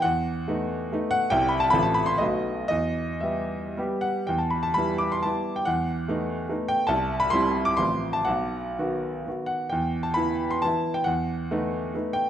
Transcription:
X:1
M:3/4
L:1/16
Q:1/4=132
K:Em
V:1 name="Grand piano"
f8 z2 f2 | g2 b a b a b c' ^d4 | ^d4 e6 f2 | g a b a b2 d' c' a3 g |
f8 z2 g2 | a3 b c'3 d' c'3 a | f8 z2 f2 | g3 a b3 c' a3 g |
f8 z2 g2 |]
V:2 name="Grand piano"
E,,4 [A,B,^D]4 [A,B,D]4 | [C,,G,CE]4 [A,,,A,C=F]4 [B,,,A,B,^F]4 | E,,4 [G,B,G]4 [G,B,G]4 | E,,4 [G,B,E]4 [G,B,E]4 |
E,,4 [A,B,^D]4 [A,B,D]4 | C,,4 [G,CE]4 [A,,,=F,C=F]4 | B,,,4 [^D,B,F]4 [D,B,F]4 | E,,4 [E,B,E]4 [E,B,E]4 |
E,,4 [A,B,^D]4 [A,B,D]4 |]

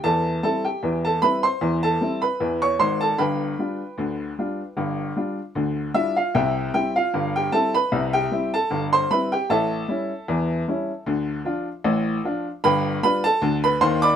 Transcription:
X:1
M:2/4
L:1/16
Q:"Swing 16ths" 1/4=76
K:C
V:1 name="Upright piano"
[Aa]2 [Aa] [Gg]2 [Aa] [Bb] [cc']- | [cc'] [Aa]2 [Bb]2 [_d_d'] [cc'] [Aa] | [Bgb]8- | [Bgb]6 [Ee] [Ff] |
[Geg]2 [Gg] [Ff]2 [Gg] [Aa] [Bb]- | [Bb] [Gg]2 [Aa]2 [cc'] [Bb] [Gg] | [Aea]8- | [Aea]6 z2 |
[Bgb]2 [Bb] [Aa]2 [Bb] [cc'] [dbd'] |]
V:2 name="Upright piano" clef=bass
[E,,E,]2 [G,CE]2 [E,,E,]2 [G,CE]2 | [E,,E,]2 [G,CE]2 [E,,E,]2 [_A,,,_A,,]2 | [G,,,G,,]2 [G,DF]2 [D,,D,]2 [G,DF]2 | [G,,,G,,]2 [G,DF]2 [D,,D,]2 [G,DF]2 |
[C,,C,]2 [G,CE]2 [G,,,G,,]2 [G,CE]2 | [C,,C,]2 [G,CE]2 [G,,,G,,]2 [G,CE]2 | [A,,,A,,]2 [G,^CE]2 [E,,E,]2 [G,CE]2 | [D,,D,]2 [F,DF]2 [A,,,A,,]2 [F,DF]2 |
[G,,,G,,]2 [G,DF]2 [D,,D,]2 [_E,,_E,]2 |]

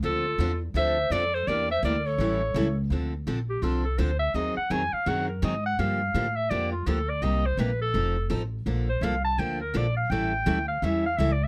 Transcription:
X:1
M:4/4
L:1/16
Q:"Swing" 1/4=167
K:Dm
V:1 name="Clarinet"
A6 z2 e4 d2 c2 | d2 e2 d2 ^c8 z2 | z6 G2 F2 A2 c2 e2 | ^d2 ^f2 ^g2 ^e2 f2 B2 d2 f2 |
f6 e2 d2 F2 A2 d2 | _e2 c2 =B2 A6 z4 | z2 c2 f2 a2 g2 B2 d2 f2 | g6 f2 e2 f2 (3e2 d2 e2 |]
V:2 name="Pan flute"
F6 z2 c4 A2 A2 | B2 c2 B2 A8 z2 | z16 | z16 |
z16 | z16 | z16 | z16 |]
V:3 name="Steel-string acoustic guitar"
[D,F,CDA]2 z2 [D,F,CDA] z3 [D,F,CDA]2 z2 [D,F,CDA] z3 | [E,B,DG]2 z2 [E,B,DG] z3 [E,G,^CEA]2 z2 [E,G,CEA] z3 | [D,F,CDA]2 z2 [D,F,CDA] z3 [D,F,CDA]2 z2 [D,F,CDA] z3 | [^D,^F,^B,^D^G]2 z2 [D,F,B,DG] z3 [D,F,B,DG]2 z2 [D,F,B,DG] z3 |
[D,F,B,DG]2 z2 [D,F,B,DG] z3 [D,F,B,DG]2 z2 [D,F,B,DG] z3 | [C,G,B,_EG]2 z2 [C,G,B,EG] z3 [F,CEA]2 z2 [F,CEA] z3 | [D,F,B,DA]2 z2 [D,F,B,DA] z3 [D,F,B,DA]2 z2 [D,F,B,DA] z3 | [E,G,^CEA]2 z2 [E,G,CEA] z3 [E,G,CEA]2 z2 [E,G,CEA] z3 |]
V:4 name="Upright bass" clef=bass
D,,4 E,,4 D,,4 F,,4 | E,,4 D,,4 A,,,4 ^C,,4 | D,,4 B,,,4 C,,4 D,,4 | ^D,,2 z2 ^E,,2 z2 ^F,,4 ^G,,4 |
G,,4 A,,4 F,,4 D,,4 | C,,4 B,,,4 F,,,4 A,,,4 | B,,,4 C,,4 D,,4 B,,,4 | A,,,4 D,,4 E,,4 ^C,,4 |]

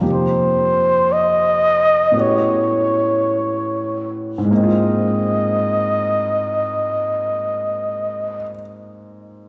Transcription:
X:1
M:4/4
L:1/8
Q:"Swing" 1/4=48
K:Ab
V:1 name="Trumpet"
c2 e2 ^c3 z | e8 |]
V:2 name="Grand piano"
[F,,C,B,EG]4 [=A,,=A,=B,^C^FG]4 | [A,,A,B,CF]8 |]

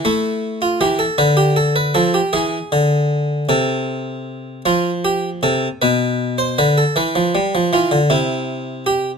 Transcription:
X:1
M:6/8
L:1/16
Q:3/8=52
K:Am
V:1 name="Harpsichord"
E3 F G A B G A B A G | ^G6 A6 | F2 G2 A2 B3 c B A | B4 F2 E4 G2 |]
V:2 name="Harpsichord" clef=bass
A,4 E,2 D,4 F,2 | E,2 D,4 C,6 | F,4 C,2 B,,4 D,2 | E, F, G, F, E, D, C,6 |]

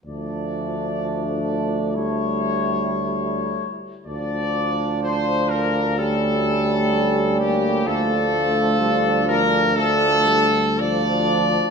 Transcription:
X:1
M:4/4
L:1/8
Q:1/4=63
K:Dm
V:1 name="Trumpet section"
d4 ^c3 z | d2 c B A3 G | A3 B A2 d2 |]
V:2 name="Flugelhorn"
D4 E3 z | D4 ^C4 | D4 D z D2 |]
V:3 name="Trombone" clef=bass
F,4 G,3 z | z4 A,2 G, B, | A,2 G, F, A, G, F,2 |]
V:4 name="Euphonium" clef=bass
A,6- A, z | F,4 G,4 | F,4 F, z F,2 |]
V:5 name="Tuba" clef=bass
D,,6- D,, z | D,,8 | D,,8 |]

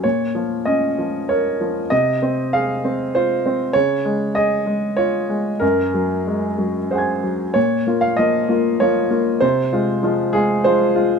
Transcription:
X:1
M:3/4
L:1/16
Q:1/4=97
K:Bbm
V:1 name="Grand piano"
d4 e4 d4 | e4 f4 c4 | d4 e4 d4 | B8 [cgaa']4 |
d3 f e4 d4 | c6 A2 c4 |]
V:2 name="Grand piano"
B,,2 F,2 D2 F,2 B2 F,2 | C,2 C2 A2 C2 F2 C2 | D,2 A,2 A2 A,2 F2 A,2 | G,,2 G,2 A,2 G,2 A2 G,2 |
B,,2 [B,F]2 [F,B,F]2 [B,F]2 [F,B,F]2 [B,F]2 | C,2 [A,F]2 [F,A,F]2 [A,F]2 [F,A,F]2 [A,F]2 |]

